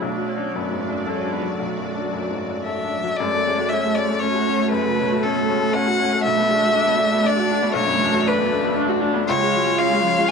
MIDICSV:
0, 0, Header, 1, 6, 480
1, 0, Start_track
1, 0, Key_signature, 3, "minor"
1, 0, Tempo, 524017
1, 33, Time_signature, 3, 2, 24, 8
1, 3395, Tempo, 506329
1, 9659, End_track
2, 0, Start_track
2, 0, Title_t, "Violin"
2, 0, Program_c, 0, 40
2, 2415, Note_on_c, 0, 76, 82
2, 2901, Note_on_c, 0, 74, 109
2, 2915, Note_off_c, 0, 76, 0
2, 3374, Note_on_c, 0, 76, 102
2, 3388, Note_off_c, 0, 74, 0
2, 3623, Note_on_c, 0, 74, 105
2, 3637, Note_off_c, 0, 76, 0
2, 3853, Note_on_c, 0, 73, 107
2, 3867, Note_off_c, 0, 74, 0
2, 4337, Note_off_c, 0, 73, 0
2, 4342, Note_on_c, 0, 71, 110
2, 4837, Note_on_c, 0, 69, 99
2, 4851, Note_off_c, 0, 71, 0
2, 5313, Note_on_c, 0, 78, 118
2, 5328, Note_off_c, 0, 69, 0
2, 5786, Note_off_c, 0, 78, 0
2, 5791, Note_on_c, 0, 76, 127
2, 6763, Note_on_c, 0, 74, 122
2, 6777, Note_off_c, 0, 76, 0
2, 7216, Note_off_c, 0, 74, 0
2, 7221, Note_on_c, 0, 73, 127
2, 7724, Note_on_c, 0, 71, 113
2, 7738, Note_off_c, 0, 73, 0
2, 8199, Note_off_c, 0, 71, 0
2, 8673, Note_on_c, 0, 73, 127
2, 9157, Note_on_c, 0, 77, 127
2, 9171, Note_off_c, 0, 73, 0
2, 9648, Note_off_c, 0, 77, 0
2, 9659, End_track
3, 0, Start_track
3, 0, Title_t, "String section"
3, 0, Program_c, 1, 48
3, 0, Note_on_c, 1, 54, 36
3, 31, Note_on_c, 1, 74, 48
3, 39, Note_on_c, 1, 66, 54
3, 2886, Note_off_c, 1, 54, 0
3, 2913, Note_off_c, 1, 66, 0
3, 2922, Note_off_c, 1, 74, 0
3, 2924, Note_on_c, 1, 66, 67
3, 2927, Note_on_c, 1, 57, 69
3, 2933, Note_on_c, 1, 69, 62
3, 5764, Note_off_c, 1, 69, 0
3, 5797, Note_on_c, 1, 62, 74
3, 8638, Note_off_c, 1, 66, 0
3, 8639, Note_off_c, 1, 57, 0
3, 8675, Note_off_c, 1, 62, 0
3, 8677, Note_on_c, 1, 56, 79
3, 8677, Note_on_c, 1, 65, 87
3, 8681, Note_on_c, 1, 73, 85
3, 9659, Note_off_c, 1, 56, 0
3, 9659, Note_off_c, 1, 65, 0
3, 9659, Note_off_c, 1, 73, 0
3, 9659, End_track
4, 0, Start_track
4, 0, Title_t, "Viola"
4, 0, Program_c, 2, 41
4, 29, Note_on_c, 2, 62, 52
4, 260, Note_on_c, 2, 61, 54
4, 274, Note_off_c, 2, 62, 0
4, 509, Note_on_c, 2, 59, 48
4, 523, Note_off_c, 2, 61, 0
4, 744, Note_on_c, 2, 62, 52
4, 757, Note_off_c, 2, 59, 0
4, 988, Note_on_c, 2, 61, 51
4, 1002, Note_off_c, 2, 62, 0
4, 1214, Note_on_c, 2, 59, 50
4, 1227, Note_off_c, 2, 61, 0
4, 1449, Note_off_c, 2, 59, 0
4, 1454, Note_on_c, 2, 57, 46
4, 2710, Note_off_c, 2, 57, 0
4, 2926, Note_on_c, 2, 56, 63
4, 3060, Note_on_c, 2, 57, 56
4, 3074, Note_off_c, 2, 56, 0
4, 3176, Note_on_c, 2, 61, 65
4, 3190, Note_off_c, 2, 57, 0
4, 3291, Note_on_c, 2, 66, 62
4, 3304, Note_off_c, 2, 61, 0
4, 3407, Note_on_c, 2, 61, 61
4, 3421, Note_off_c, 2, 66, 0
4, 3531, Note_on_c, 2, 57, 60
4, 3545, Note_off_c, 2, 61, 0
4, 3646, Note_on_c, 2, 56, 56
4, 3660, Note_off_c, 2, 57, 0
4, 3763, Note_on_c, 2, 57, 60
4, 3777, Note_off_c, 2, 56, 0
4, 3887, Note_on_c, 2, 61, 70
4, 3902, Note_off_c, 2, 57, 0
4, 4005, Note_on_c, 2, 66, 69
4, 4019, Note_off_c, 2, 61, 0
4, 4136, Note_on_c, 2, 61, 71
4, 4150, Note_off_c, 2, 66, 0
4, 4254, Note_on_c, 2, 57, 66
4, 4269, Note_off_c, 2, 61, 0
4, 4366, Note_off_c, 2, 57, 0
4, 4371, Note_on_c, 2, 56, 73
4, 4489, Note_on_c, 2, 57, 62
4, 4503, Note_off_c, 2, 56, 0
4, 4610, Note_on_c, 2, 61, 72
4, 4624, Note_off_c, 2, 57, 0
4, 4733, Note_on_c, 2, 66, 65
4, 4747, Note_off_c, 2, 61, 0
4, 4851, Note_on_c, 2, 61, 70
4, 4865, Note_off_c, 2, 66, 0
4, 4957, Note_on_c, 2, 57, 70
4, 4971, Note_off_c, 2, 61, 0
4, 5079, Note_on_c, 2, 56, 72
4, 5093, Note_off_c, 2, 57, 0
4, 5199, Note_on_c, 2, 57, 70
4, 5213, Note_off_c, 2, 56, 0
4, 5324, Note_on_c, 2, 61, 77
4, 5339, Note_off_c, 2, 57, 0
4, 5449, Note_on_c, 2, 66, 71
4, 5463, Note_off_c, 2, 61, 0
4, 5568, Note_on_c, 2, 61, 79
4, 5582, Note_off_c, 2, 66, 0
4, 5692, Note_on_c, 2, 57, 69
4, 5706, Note_off_c, 2, 61, 0
4, 5791, Note_off_c, 2, 57, 0
4, 5797, Note_on_c, 2, 57, 78
4, 5930, Note_on_c, 2, 59, 70
4, 5945, Note_off_c, 2, 57, 0
4, 6045, Note_on_c, 2, 62, 79
4, 6060, Note_off_c, 2, 59, 0
4, 6170, Note_on_c, 2, 66, 72
4, 6185, Note_off_c, 2, 62, 0
4, 6284, Note_on_c, 2, 62, 85
4, 6299, Note_off_c, 2, 66, 0
4, 6399, Note_on_c, 2, 59, 78
4, 6413, Note_off_c, 2, 62, 0
4, 6518, Note_on_c, 2, 57, 71
4, 6532, Note_off_c, 2, 59, 0
4, 6635, Note_on_c, 2, 59, 78
4, 6649, Note_off_c, 2, 57, 0
4, 6767, Note_on_c, 2, 62, 85
4, 6781, Note_off_c, 2, 59, 0
4, 6877, Note_on_c, 2, 66, 82
4, 6891, Note_off_c, 2, 62, 0
4, 7002, Note_on_c, 2, 62, 88
4, 7016, Note_off_c, 2, 66, 0
4, 7114, Note_on_c, 2, 59, 80
4, 7128, Note_off_c, 2, 62, 0
4, 7234, Note_off_c, 2, 59, 0
4, 7244, Note_on_c, 2, 57, 78
4, 7363, Note_on_c, 2, 59, 78
4, 7377, Note_off_c, 2, 57, 0
4, 7486, Note_on_c, 2, 62, 93
4, 7500, Note_off_c, 2, 59, 0
4, 7599, Note_on_c, 2, 66, 77
4, 7613, Note_off_c, 2, 62, 0
4, 7716, Note_on_c, 2, 62, 84
4, 7731, Note_off_c, 2, 66, 0
4, 7836, Note_on_c, 2, 59, 79
4, 7850, Note_off_c, 2, 62, 0
4, 7955, Note_on_c, 2, 57, 82
4, 7969, Note_off_c, 2, 59, 0
4, 8056, Note_on_c, 2, 59, 78
4, 8070, Note_off_c, 2, 57, 0
4, 8179, Note_on_c, 2, 62, 95
4, 8193, Note_off_c, 2, 59, 0
4, 8298, Note_on_c, 2, 66, 82
4, 8312, Note_off_c, 2, 62, 0
4, 8415, Note_on_c, 2, 62, 85
4, 8430, Note_off_c, 2, 66, 0
4, 8542, Note_on_c, 2, 59, 83
4, 8557, Note_off_c, 2, 62, 0
4, 8669, Note_off_c, 2, 59, 0
4, 8679, Note_on_c, 2, 65, 85
4, 9653, Note_off_c, 2, 65, 0
4, 9659, End_track
5, 0, Start_track
5, 0, Title_t, "Upright piano"
5, 0, Program_c, 3, 0
5, 0, Control_c, 3, 64, 127
5, 17, Note_on_c, 3, 35, 50
5, 52, Control_c, 3, 64, 0
5, 163, Note_on_c, 3, 54, 43
5, 184, Control_c, 3, 64, 127
5, 333, Note_on_c, 3, 62, 40
5, 422, Note_off_c, 3, 54, 0
5, 507, Note_on_c, 3, 42, 43
5, 587, Note_off_c, 3, 62, 0
5, 649, Note_on_c, 3, 44, 33
5, 755, Note_off_c, 3, 42, 0
5, 811, Note_off_c, 3, 44, 0
5, 817, Note_on_c, 3, 42, 37
5, 978, Note_on_c, 3, 69, 50
5, 1071, Note_off_c, 3, 42, 0
5, 1135, Note_on_c, 3, 62, 37
5, 1232, Note_off_c, 3, 69, 0
5, 1298, Note_on_c, 3, 54, 37
5, 1392, Note_off_c, 3, 62, 0
5, 1410, Note_off_c, 3, 35, 0
5, 1459, Note_on_c, 3, 35, 38
5, 1474, Control_c, 3, 64, 0
5, 1555, Note_off_c, 3, 54, 0
5, 1622, Note_on_c, 3, 42, 31
5, 1648, Control_c, 3, 64, 127
5, 1784, Note_on_c, 3, 62, 33
5, 1883, Note_off_c, 3, 42, 0
5, 1951, Note_on_c, 3, 42, 35
5, 2047, Note_off_c, 3, 62, 0
5, 2111, Note_on_c, 3, 44, 27
5, 2213, Note_off_c, 3, 42, 0
5, 2272, Note_on_c, 3, 42, 31
5, 2276, Note_off_c, 3, 44, 0
5, 2437, Note_on_c, 3, 69, 38
5, 2534, Note_off_c, 3, 42, 0
5, 2605, Note_on_c, 3, 62, 32
5, 2698, Note_off_c, 3, 69, 0
5, 2782, Note_on_c, 3, 54, 37
5, 2861, Note_off_c, 3, 62, 0
5, 2888, Note_off_c, 3, 35, 0
5, 2928, Note_on_c, 3, 42, 77
5, 2932, Note_off_c, 3, 54, 0
5, 2941, Control_c, 3, 64, 0
5, 3063, Note_on_c, 3, 57, 64
5, 3066, Control_c, 3, 64, 127
5, 3175, Note_on_c, 3, 56, 47
5, 3240, Note_off_c, 3, 57, 0
5, 3280, Note_on_c, 3, 57, 57
5, 3285, Note_off_c, 3, 56, 0
5, 3400, Note_on_c, 3, 61, 61
5, 3469, Note_off_c, 3, 57, 0
5, 3522, Note_on_c, 3, 57, 52
5, 3592, Note_off_c, 3, 61, 0
5, 3639, Note_on_c, 3, 61, 53
5, 3713, Note_off_c, 3, 57, 0
5, 3759, Note_on_c, 3, 57, 50
5, 3830, Note_off_c, 3, 61, 0
5, 3881, Note_on_c, 3, 61, 70
5, 3950, Note_off_c, 3, 57, 0
5, 3997, Note_on_c, 3, 66, 55
5, 4071, Note_off_c, 3, 61, 0
5, 4119, Note_on_c, 3, 61, 67
5, 4190, Note_off_c, 3, 66, 0
5, 4236, Note_on_c, 3, 57, 59
5, 4311, Note_off_c, 3, 61, 0
5, 4323, Note_off_c, 3, 42, 0
5, 4354, Note_on_c, 3, 42, 67
5, 4378, Control_c, 3, 64, 0
5, 4429, Note_off_c, 3, 57, 0
5, 4484, Note_on_c, 3, 49, 61
5, 4553, Control_c, 3, 64, 127
5, 4620, Note_on_c, 3, 47, 51
5, 4673, Note_off_c, 3, 49, 0
5, 4729, Note_off_c, 3, 47, 0
5, 4732, Note_on_c, 3, 57, 60
5, 4849, Note_on_c, 3, 61, 64
5, 4917, Note_off_c, 3, 57, 0
5, 4972, Note_on_c, 3, 57, 55
5, 5035, Note_off_c, 3, 61, 0
5, 5094, Note_on_c, 3, 61, 65
5, 5156, Note_off_c, 3, 57, 0
5, 5207, Note_on_c, 3, 57, 62
5, 5277, Note_off_c, 3, 61, 0
5, 5333, Note_on_c, 3, 61, 64
5, 5394, Note_off_c, 3, 57, 0
5, 5442, Note_on_c, 3, 66, 63
5, 5517, Note_off_c, 3, 61, 0
5, 5569, Note_on_c, 3, 61, 72
5, 5631, Note_off_c, 3, 66, 0
5, 5686, Note_on_c, 3, 57, 59
5, 5755, Note_off_c, 3, 61, 0
5, 5757, Note_off_c, 3, 42, 0
5, 5802, Note_off_c, 3, 57, 0
5, 5809, Note_on_c, 3, 35, 69
5, 5816, Control_c, 3, 64, 0
5, 5920, Note_on_c, 3, 57, 66
5, 5972, Control_c, 3, 64, 127
5, 6041, Note_on_c, 3, 56, 54
5, 6111, Note_off_c, 3, 57, 0
5, 6158, Note_on_c, 3, 57, 67
5, 6159, Note_off_c, 3, 56, 0
5, 6277, Note_on_c, 3, 62, 68
5, 6351, Note_off_c, 3, 57, 0
5, 6388, Note_on_c, 3, 57, 69
5, 6470, Note_off_c, 3, 62, 0
5, 6510, Note_on_c, 3, 62, 66
5, 6586, Note_off_c, 3, 57, 0
5, 6628, Note_on_c, 3, 57, 64
5, 6707, Note_off_c, 3, 62, 0
5, 6735, Note_on_c, 3, 62, 76
5, 6825, Note_off_c, 3, 57, 0
5, 6861, Note_on_c, 3, 66, 72
5, 6938, Note_off_c, 3, 62, 0
5, 6986, Note_on_c, 3, 62, 72
5, 7060, Note_off_c, 3, 66, 0
5, 7109, Note_on_c, 3, 57, 61
5, 7182, Note_off_c, 3, 62, 0
5, 7201, Note_off_c, 3, 35, 0
5, 7215, Note_on_c, 3, 35, 85
5, 7252, Control_c, 3, 64, 0
5, 7303, Note_off_c, 3, 57, 0
5, 7328, Note_on_c, 3, 42, 72
5, 7400, Control_c, 3, 64, 127
5, 7456, Note_on_c, 3, 40, 61
5, 7533, Note_off_c, 3, 42, 0
5, 7574, Note_on_c, 3, 57, 72
5, 7585, Note_off_c, 3, 40, 0
5, 7709, Note_on_c, 3, 62, 72
5, 7776, Note_off_c, 3, 57, 0
5, 7826, Note_on_c, 3, 57, 68
5, 7904, Note_off_c, 3, 62, 0
5, 7952, Note_on_c, 3, 62, 76
5, 8022, Note_off_c, 3, 57, 0
5, 8082, Note_on_c, 3, 57, 70
5, 8145, Note_off_c, 3, 62, 0
5, 8199, Note_on_c, 3, 62, 85
5, 8270, Note_off_c, 3, 57, 0
5, 8312, Note_on_c, 3, 66, 79
5, 8389, Note_off_c, 3, 62, 0
5, 8432, Note_on_c, 3, 62, 79
5, 8505, Note_off_c, 3, 66, 0
5, 8561, Note_on_c, 3, 57, 66
5, 8625, Note_off_c, 3, 62, 0
5, 8627, Note_off_c, 3, 35, 0
5, 8678, Note_off_c, 3, 57, 0
5, 8685, Note_on_c, 3, 37, 85
5, 8694, Control_c, 3, 64, 0
5, 8797, Note_on_c, 3, 56, 72
5, 8864, Control_c, 3, 64, 127
5, 8930, Note_on_c, 3, 54, 59
5, 8989, Note_off_c, 3, 56, 0
5, 9042, Note_on_c, 3, 56, 69
5, 9043, Note_off_c, 3, 54, 0
5, 9166, Note_on_c, 3, 61, 73
5, 9231, Note_off_c, 3, 56, 0
5, 9293, Note_on_c, 3, 56, 68
5, 9352, Note_off_c, 3, 61, 0
5, 9415, Note_on_c, 3, 61, 67
5, 9474, Note_off_c, 3, 56, 0
5, 9530, Note_on_c, 3, 56, 71
5, 9595, Note_off_c, 3, 61, 0
5, 9659, Note_off_c, 3, 37, 0
5, 9659, Note_off_c, 3, 56, 0
5, 9659, End_track
6, 0, Start_track
6, 0, Title_t, "Cello"
6, 0, Program_c, 4, 42
6, 32, Note_on_c, 4, 57, 46
6, 487, Note_off_c, 4, 57, 0
6, 497, Note_on_c, 4, 57, 55
6, 964, Note_on_c, 4, 56, 55
6, 978, Note_off_c, 4, 57, 0
6, 1451, Note_off_c, 4, 56, 0
6, 1459, Note_on_c, 4, 54, 41
6, 2713, Note_off_c, 4, 54, 0
6, 2915, Note_on_c, 4, 57, 78
6, 5755, Note_off_c, 4, 57, 0
6, 5796, Note_on_c, 4, 57, 84
6, 8637, Note_off_c, 4, 57, 0
6, 8677, Note_on_c, 4, 56, 89
6, 9124, Note_off_c, 4, 56, 0
6, 9164, Note_on_c, 4, 56, 87
6, 9390, Note_on_c, 4, 53, 94
6, 9405, Note_off_c, 4, 56, 0
6, 9631, Note_off_c, 4, 53, 0
6, 9659, End_track
0, 0, End_of_file